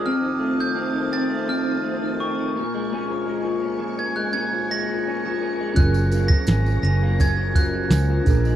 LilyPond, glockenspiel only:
\new Staff \with { instrumentName = "Glockenspiel" } { \time 4/4 \key fis \major \tempo 4 = 84 f'''8. g'''8. a'''8 f'''4 cis'''8. r16 | r4. gis'''16 fis'''16 gis'''8 ais'''4 r8 | fis'''8. ais'''8. ais'''8 gis'''8 fis'''4 r8 | }